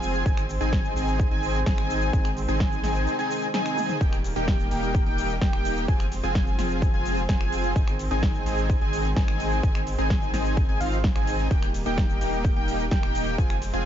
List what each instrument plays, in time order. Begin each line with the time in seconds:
Already playing: sub bass F1, string section F3 G#3 C4, supersaw synth C4 F4 G#4, analog synth lead G#5
0.02 open hi-hat, shaker
0.14 closed hi-hat, shaker
0.26 sub bass G#1, string section D#3 G#3, supersaw synth C4 D#4 G#4, analog synth lead G#5, kick, closed hi-hat, shaker
0.37 finger snap, closed hi-hat, shaker
0.49 open hi-hat, shaker
0.61 sub bass G#1, supersaw synth C4 D#4 G#4, analog synth lead G#5, closed hi-hat, shaker
0.73 kick, snare, closed hi-hat, shaker
0.84 closed hi-hat, shaker
0.96 sub bass G#1, supersaw synth C4 D#4 G#4, analog synth lead G#5, open hi-hat, shaker
1.08 closed hi-hat, shaker
1.20 kick, closed hi-hat, shaker
1.31 sub bass G#1, supersaw synth C4 D#4 G#4, analog synth lead G#5, closed hi-hat
1.43 open hi-hat, shaker
1.55 closed hi-hat, shaker
1.66 sub bass G#1, supersaw synth C4 D#4 G#4, analog synth lead G#5, kick, snare, closed hi-hat, shaker
1.78 finger snap, closed hi-hat
1.90 open hi-hat, shaker
2.02 closed hi-hat, shaker
2.13 sub bass G#1, supersaw synth C4 D#4, analog synth lead G#5, kick, closed hi-hat, shaker
2.25 finger snap, closed hi-hat, shaker
2.37 open hi-hat, shaker
2.48 sub bass G#1, supersaw synth C4 D#4 G#4, analog synth lead G#5, closed hi-hat, shaker
2.60 kick, snare, closed hi-hat, shaker
2.72 closed hi-hat, shaker
2.84 sub bass G#1, supersaw synth C4 D#4 G#4, analog synth lead G#5, snare, open hi-hat, shaker
2.95 closed hi-hat, shaker
3.07 closed hi-hat, shaker
3.19 supersaw synth C4 D#4 G#4, analog synth lead G#5, closed hi-hat, shaker
3.31 open hi-hat, shaker
3.42 closed hi-hat, shaker
3.54 supersaw synth C4 D#4 G#4, analog synth lead G#5, snare, closed hi-hat, shaker
3.66 finger snap, closed hi-hat, shaker
3.77 open hi-hat, high tom, shaker
3.89 closed hi-hat, mid tom, shaker
4.01 sub bass D#1, string section G3 A#3, supersaw synth A#3 D#4 G4, analog synth lead G5, kick, closed hi-hat, ride, shaker
4.13 finger snap, closed hi-hat, shaker
4.24 open hi-hat, ride, shaker
4.36 sub bass D#1, supersaw synth A#3 D#4 G4, analog synth lead G5, closed hi-hat, shaker
4.48 kick, snare, closed hi-hat, ride, shaker
4.59 closed hi-hat, shaker
4.71 sub bass D#1, supersaw synth A#3 D#4 G4, analog synth lead G5, open hi-hat, ride, shaker
4.83 closed hi-hat, shaker
4.95 kick, closed hi-hat, ride, shaker
5.06 sub bass D#1, supersaw synth A#3 D#4 G4, analog synth lead G5, closed hi-hat
5.18 open hi-hat, ride, shaker
5.30 closed hi-hat, shaker
5.41 sub bass D#1, supersaw synth A#3 D#4 G4, analog synth lead G5, kick, snare, closed hi-hat, ride, shaker
5.53 finger snap, closed hi-hat
5.65 open hi-hat, ride, shaker
5.77 closed hi-hat, shaker
5.88 sub bass F1, string section F3 G#3 C4, supersaw synth C4 F4 G#4, analog synth lead G#5, kick, closed hi-hat, ride, shaker
6.00 finger snap, closed hi-hat, shaker
6.12 open hi-hat, ride, shaker
6.23 sub bass F1, supersaw synth C4 F4 G#4, analog synth lead G#5, closed hi-hat, shaker
6.35 kick, snare, closed hi-hat, ride, shaker
6.47 closed hi-hat, shaker
6.59 sub bass F1, supersaw synth C4 F4 G#4, analog synth lead G#5, snare, open hi-hat, ride, shaker
6.70 closed hi-hat, shaker
6.82 kick, closed hi-hat, ride, shaker
6.94 sub bass F1, supersaw synth C4 F4 G#4, analog synth lead G#5, closed hi-hat
7.05 open hi-hat, ride, shaker
7.17 closed hi-hat, shaker
7.29 sub bass F1, supersaw synth C4 F4 G#4, analog synth lead G#5, kick, snare, closed hi-hat, ride, shaker
7.41 finger snap, closed hi-hat
7.52 open hi-hat, ride, shaker
7.64 closed hi-hat, shaker
7.76 sub bass G#1, string section D#3, supersaw synth C4 D#4 G#4, analog synth lead G#5, kick, closed hi-hat, ride, shaker
7.88 finger snap, closed hi-hat, shaker
7.99 open hi-hat, ride, shaker
8.11 sub bass G#1, supersaw synth C4 D#4 G#4, analog synth lead G#5, closed hi-hat, shaker
8.23 kick, snare, closed hi-hat, ride, shaker
8.35 closed hi-hat, shaker
8.46 sub bass G#1, supersaw synth C4 D#4 G#4, analog synth lead G#5, open hi-hat, ride, shaker
8.58 closed hi-hat, shaker
8.70 kick, closed hi-hat, ride, shaker
8.81 sub bass G#1, supersaw synth C4 D#4 G#4, analog synth lead G#5, closed hi-hat
8.93 open hi-hat, ride, shaker
9.05 closed hi-hat, shaker
9.16 sub bass G#1, supersaw synth C4 D#4 G#4, analog synth lead G#5, kick, snare, closed hi-hat, ride, shaker
9.28 finger snap, closed hi-hat
9.40 open hi-hat, ride, shaker
9.52 closed hi-hat, shaker
9.63 sub bass G#1, supersaw synth D#4 G#4, analog synth lead G#5, kick, closed hi-hat, ride, shaker
9.75 finger snap, closed hi-hat, shaker
9.87 open hi-hat, ride, shaker
9.98 sub bass G#1, supersaw synth C4 D#4 G#4, analog synth lead G#5, closed hi-hat, shaker
10.10 kick, snare, closed hi-hat, ride, shaker
10.22 closed hi-hat, shaker
10.34 sub bass G#1, supersaw synth C4 D#4 G#4, analog synth lead G#5, snare, open hi-hat, ride, shaker
10.46 closed hi-hat, shaker
10.57 kick, closed hi-hat, ride, shaker
10.69 sub bass G#1, supersaw synth C4 D#4 G#4, analog synth lead G#5, closed hi-hat
10.80 sub bass G#1, supersaw synth C4 D#4 F4, analog synth lead F5, open hi-hat, ride, shaker
10.92 closed hi-hat, shaker
11.04 kick, snare, closed hi-hat, ride, shaker
11.16 sub bass G#1, supersaw synth C4 D#4 G#4, analog synth lead G#5, finger snap, closed hi-hat, shaker
11.27 open hi-hat, ride, shaker
11.39 closed hi-hat, shaker
11.51 sub bass D#1, string section G3 A#3, supersaw synth A#3 D#4 G4, analog synth lead G5, kick, closed hi-hat, ride, shaker
11.63 finger snap, closed hi-hat, shaker
11.74 open hi-hat, ride, shaker
11.86 sub bass D#1, supersaw synth A#3 D#4 G4, analog synth lead G5, closed hi-hat, shaker
11.98 kick, snare, closed hi-hat, ride, shaker
12.09 closed hi-hat, shaker
12.21 sub bass D#1, supersaw synth A#3 D#4 G4, analog synth lead G5, open hi-hat, ride, shaker
12.33 closed hi-hat, shaker
12.45 kick, closed hi-hat, ride, shaker
12.56 sub bass D#1, supersaw synth A#3 D#4 G4, analog synth lead G5, closed hi-hat
12.68 open hi-hat, ride, shaker
12.80 closed hi-hat, shaker
12.91 sub bass D#1, supersaw synth A#3 D#4 G4, analog synth lead G5, kick, snare, closed hi-hat, ride, shaker
13.03 finger snap, closed hi-hat
13.15 open hi-hat, ride, shaker
13.27 closed hi-hat, shaker
13.38 sub bass F1, string section F3 G#3 C4, supersaw synth C4 F4 G#4, analog synth lead G#5, kick, closed hi-hat, ride, shaker
13.50 finger snap, closed hi-hat, shaker
13.62 open hi-hat, ride, shaker
13.73 sub bass F1, supersaw synth C4 F4 G#4, analog synth lead G#5, closed hi-hat, shaker